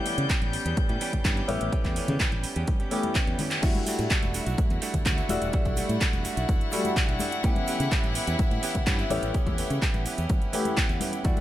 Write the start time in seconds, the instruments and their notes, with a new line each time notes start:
Already playing: string section G3 G6, grand piano A3 B3 C#4 E4 G4
0.05 clean electric guitar E3 B3 C#4 G4, open hi-hat, shaker
0.17 fingered electric bass C#3, closed hi-hat, shaker
0.29 clean electric guitar E3 B3 C#4 G4, kick, clap, closed hi-hat
0.41 fingered electric bass A1, clean electric guitar B3 C#4 G4, closed hi-hat, high conga, shaker
0.53 open hi-hat, shaker
0.65 fingered electric bass E2, clean electric guitar B3 C#4 G4, closed hi-hat, shaker
0.77 kick, closed hi-hat, high conga, shaker
0.89 fingered electric bass A2, clean electric guitar B3 C#4 G4, closed hi-hat, shaker
1.01 clean electric guitar E3 B3 C#4 G4, open hi-hat, shaker
1.13 muted fingered electric bass stroke, kick, closed hi-hat, high conga, low conga, shaker
1.25 fingered electric bass G2, clean electric guitar E3 B3 C#4 G4, kick, clap, closed hi-hat, shaker
1.37 closed hi-hat, shaker
1.48 fingered electric bass A1, clean electric guitar E3 B3 C#4 G4, grand piano A3 B3 C#4 E4 G4, open hi-hat, high conga, shaker
1.61 fingered electric bass A1, clean electric guitar B3 C#4 G4, closed hi-hat, shaker
1.71 clean electric guitar E3 B3 C#4 G4, grand piano A3 B3 C#4 G4, kick, closed hi-hat, shaker
1.84 fingered electric bass E2, kick, clap, closed hi-hat, high conga, shaker
1.96 clean electric guitar E3 B3 C#4 G4, open hi-hat, shaker
2.08 fingered electric bass C#3, closed hi-hat, low conga, shaker
2.20 clean electric guitar E3 B3 C#4 G4, kick, clap, closed hi-hat, shaker
2.31 fingered electric bass A1, clean electric guitar B3 C#4 G4, closed hi-hat, high conga, shaker
2.43 muted fingered electric bass stroke, open hi-hat, shaker
2.56 fingered electric bass E2, clean electric guitar B3 C#4 G4, closed hi-hat
2.67 fingered electric bass A1, kick, closed hi-hat, high conga, shaker
2.80 clean electric guitar B3 C#4 G4, closed hi-hat, shaker
2.91 clean electric guitar E3 B3 C#4 G4, grand piano A3 B3 C#4 E4 G4, open hi-hat, shaker
3.03 closed hi-hat, high conga, shaker
3.15 clean electric guitar E3 B3 C#4 G4, kick, clap, closed hi-hat, shaker
3.27 fingered electric bass E2, closed hi-hat, shaker
3.39 clean electric guitar E3 B3 C#4 G4, open hi-hat, high conga, low conga, shaker
3.51 clean electric guitar B3 C#4 G4, clap, closed hi-hat, shaker
3.62 fingered electric bass E2, grand piano G3 A3 D4 E4 F#4, clean electric guitar G3 A3 D4 F#4, string section E4 F#5, kick, closed hi-hat, crash, shaker
3.75 closed hi-hat, high conga, shaker
3.86 clean electric guitar G3 A3 D4 F#4, open hi-hat, shaker
3.99 fingered electric bass A2, closed hi-hat, shaker
4.10 clean electric guitar G3 A3 D4 F#4, kick, clap, closed hi-hat, shaker
4.23 fingered electric bass E1, closed hi-hat, high conga, shaker
4.34 clean electric guitar G3 A3 D4 F#4, open hi-hat, shaker
4.46 fingered electric bass B1, clean electric guitar A3 D4 F#4, closed hi-hat, shaker
4.58 kick, closed hi-hat, high conga, shaker
4.70 fingered electric bass E2, closed hi-hat, shaker
4.81 clean electric guitar G3 A3 D4 F#4, open hi-hat, shaker
4.94 muted fingered electric bass stroke, kick, closed hi-hat, high conga, low conga, shaker
5.05 fingered electric bass D2, clean electric guitar G3 A3 D4 F#4, kick, clap, closed hi-hat, shaker
5.17 clean electric guitar A3 D4 F#4, closed hi-hat, shaker
5.29 fingered electric bass E1, clean electric guitar G3 A3 D4 F#4, grand piano G3 A3 D4 E4 F#4, open hi-hat, high conga, shaker
5.42 fingered electric bass E1, clean electric guitar A3 D4 F#4, closed hi-hat, shaker
5.53 grand piano G3 A3 E4, clean electric guitar G3 A3 D4 F#4, kick, closed hi-hat, shaker
5.65 fingered electric bass B1, kick, closed hi-hat, high conga, shaker
5.77 clean electric guitar G3 A3 D4 F#4, open hi-hat, shaker
5.89 fingered electric bass A2, closed hi-hat, shaker
6.00 clean electric guitar G3 A3 D4 F#4, kick, clap, closed hi-hat, shaker
6.13 fingered electric bass E1, closed hi-hat, high conga, shaker
6.24 clean electric guitar G3 A3 D4 F#4, muted fingered electric bass stroke, open hi-hat, shaker
6.36 fingered electric bass B1, clean electric guitar A3 D4 F#4, closed hi-hat, shaker
6.49 kick, closed hi-hat, high conga, shaker
6.60 closed hi-hat, shaker
6.71 grand piano G3 A3 D4 E4 F#4, clean electric guitar G3 A3 D4 F#4, open hi-hat, shaker
6.84 closed hi-hat, high conga, shaker
6.96 clean electric guitar G3 A3 D4 F#4, kick, clap, closed hi-hat, shaker
7.08 fingered electric bass B1, clean electric guitar A3 D4 F#4, closed hi-hat, shaker
7.19 clean electric guitar G3 A3 D4 F#4, open hi-hat, high conga, shaker
7.31 clean electric guitar A3 D4 F#4, closed hi-hat, shaker
7.43 fingered electric bass A2, clean electric guitar E3 B3 C#4 G4, grand piano A3 B3 C#4 E4 G4, kick, closed hi-hat, shaker
7.56 closed hi-hat, high conga, shaker
7.67 clean electric guitar E3 B3 C#4 G4, open hi-hat, shaker
7.80 fingered electric bass C#3, closed hi-hat, shaker
7.91 clean electric guitar E3 B3 C#4 G4, kick, clap, closed hi-hat, shaker
8.03 fingered electric bass A1, closed hi-hat, high conga, shaker
8.15 clean electric guitar E3 B3 C#4 G4, open hi-hat, shaker
8.27 fingered electric bass E2, clean electric guitar B3 C#4 G4, closed hi-hat, shaker
8.39 kick, closed hi-hat, high conga, shaker
8.51 fingered electric bass A2, closed hi-hat, shaker
8.62 clean electric guitar E3 B3 C#4 G4, open hi-hat, shaker
8.75 muted fingered electric bass stroke, kick, closed hi-hat, high conga, low conga, shaker
8.87 fingered electric bass G2, clean electric guitar E3 B3 C#4 G4, kick, clap, closed hi-hat, shaker
8.99 clean electric guitar B3 C#4 G4, closed hi-hat, shaker
9.10 fingered electric bass A1, clean electric guitar E3 B3 C#4 G4, grand piano A3 B3 C#4 E4 G4, open hi-hat, high conga, shaker
9.22 fingered electric bass A1, clean electric guitar B3 C#4 G4, closed hi-hat, shaker
9.33 clean electric guitar E3 B3 C#4 G4, grand piano A3 B3, kick, closed hi-hat, shaker
9.47 fingered electric bass E2, kick, closed hi-hat, high conga, shaker
9.58 clean electric guitar E3 B3 C#4 G4, open hi-hat, shaker
9.70 fingered electric bass C#3, closed hi-hat, shaker
9.82 clean electric guitar E3 B3 C#4 G4, kick, clap, closed hi-hat, shaker
9.94 fingered electric bass A1, closed hi-hat, high conga, shaker
10.05 clean electric guitar E3 B3 C#4 G4, muted fingered electric bass stroke, open hi-hat, shaker
10.18 fingered electric bass E2, clean electric guitar B3 C#4 G4, closed hi-hat, shaker
10.29 fingered electric bass A1, kick, closed hi-hat, high conga, shaker
10.42 closed hi-hat, shaker
10.53 clean electric guitar E3 B3 C#4 G4, grand piano A3 B3 C#4 E4 G4, open hi-hat, shaker
10.65 closed hi-hat, high conga, shaker
10.77 clean electric guitar E3 B3 C#4 G4, kick, clap, closed hi-hat, shaker
10.89 fingered electric bass E2, clean electric guitar B3 C#4 G4, closed hi-hat, shaker
11.00 clean electric guitar E3 B3 C#4 G4, open hi-hat, high conga, shaker
11.13 clean electric guitar B3 C#4 G4, closed hi-hat, shaker
11.24 fingered electric bass E2, grand piano G3 A3 D4 E4 F#4, clean electric guitar G3 A3 D4 F#4, string section E4 F#5, kick, closed hi-hat, shaker
11.37 closed hi-hat, high conga, shaker